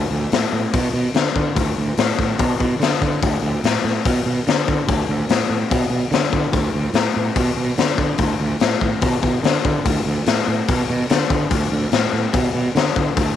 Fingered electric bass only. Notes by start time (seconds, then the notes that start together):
0.11 D2
0.32 A2
0.53 A2
0.74 B2
0.93 B2
1.15 D3
1.35 D3
1.56 D2
1.78 D2
1.98 A2
2.19 A2
2.39 B2
2.60 B2
2.80 D3
3.01 D3
3.22 D2
3.43 D2
3.64 A2
3.84 A2
4.05 B2
4.26 B2
4.47 D3
4.67 D3
4.88 D2
5.09 D2
5.30 A2
5.50 A2
5.71 B2
5.90 B2
6.11 D3
6.32 D3
6.53 D2
6.74 D2
6.93 A2
7.16 A2
7.36 B2
7.57 B2
7.78 D3
7.97 D3
8.18 D2
8.40 D2
8.61 A2
8.81 A2
9.01 B2
9.22 B2
9.43 D3
9.65 D3
9.85 D2
10.06 D2
10.27 A2
10.47 A2
10.69 B2
10.90 B2
11.10 D3
11.30 D3
11.50 D2
11.72 D2
11.92 A2
12.13 A2
12.33 B2
12.54 B2
12.75 D3
12.96 D3
13.17 D2